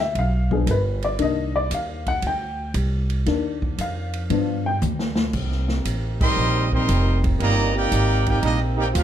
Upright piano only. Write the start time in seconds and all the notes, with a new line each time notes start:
0.00 E5
0.19 F5
0.51 F3 B3 D4 G#4
0.66 A#4
0.71 B4
1.04 D5
1.19 D#3 A#3 D4 D#5
1.56 D5
1.74 F5
2.08 F#5
2.27 G5
3.26 D#3 A#3 D4
3.81 F5
4.30 F3 B3 D4
4.66 G5